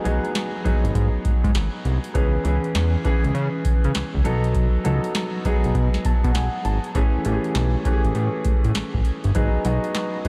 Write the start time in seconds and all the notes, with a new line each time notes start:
Already playing: F#3 B3 D#4 G#4
0.04 B1 F#3 B3 D#4 G#4, closed hi-hat
0.25 closed hi-hat
0.35 snare, clap, closed hi-hat
0.64 G#1 F#3 B3 D#4 G#4, kick, closed hi-hat
0.84 G#1, closed hi-hat
0.95 G#2, kick, closed hi-hat
1.25 G#2, kick, closed hi-hat
1.44 G#2, kick, closed hi-hat
1.55 G#1, snare, clap, closed hi-hat
1.85 C2, closed hi-hat
2.04 closed hi-hat
2.14 C#2 E3 B3 C#4 G#4, kick, closed hi-hat
2.44 C#2 E3 B3 C#4 G#4, closed hi-hat
2.64 closed hi-hat
2.75 E2, snare, clap, closed hi-hat
3.04 E3 B3 C#4 G#4, kick, closed hi-hat
3.24 C#2, closed hi-hat
3.34 C#3, closed hi-hat
3.65 C#3, kick, closed hi-hat
3.84 C#3, closed hi-hat
3.95 C#2, snare, clap, closed hi-hat
4.14 C#2, kick
4.24 B1 F#3 B3 D#4 A4, closed hi-hat
4.44 closed hi-hat
4.55 kick, closed hi-hat
4.84 C#2 F#3 B3 D#4 A4, closed hi-hat
5.04 closed hi-hat
5.15 snare, clap, closed hi-hat
5.45 B1 F#3 B3 D#4 G#4, kick, closed hi-hat
5.64 B1, closed hi-hat
5.75 B2, kick, closed hi-hat
5.94 snare
6.05 B2 A5, kick, closed hi-hat
6.24 B2 F#5, kick, closed hi-hat
6.34 B1 G#5, snare, clap, closed hi-hat
6.65 G#1 A5, closed hi-hat
6.84 closed hi-hat
6.95 A1 E3 A3 C#4 G#4, kick, closed hi-hat
7.25 A1 E3 A3 C#4 G4, closed hi-hat
7.32 G#4
7.44 closed hi-hat
7.55 B1, snare, clap, closed hi-hat
7.85 E3 A3 C#4 G4, kick, closed hi-hat
7.92 G#4
8.04 A1, closed hi-hat
8.15 A2, closed hi-hat
8.45 A2, kick, closed hi-hat
8.64 A2, closed hi-hat
8.75 A1, snare, clap, closed hi-hat
8.94 A1, kick
9.05 closed hi-hat
9.24 G1, closed hi-hat
9.35 G#1 F#3 B3 D#4 G#4, kick, closed hi-hat
9.65 B1 F#3 B3 D#4 F#4, closed hi-hat
9.84 closed hi-hat
9.95 snare, clap, closed hi-hat
10.25 G#1 F#3, kick, closed hi-hat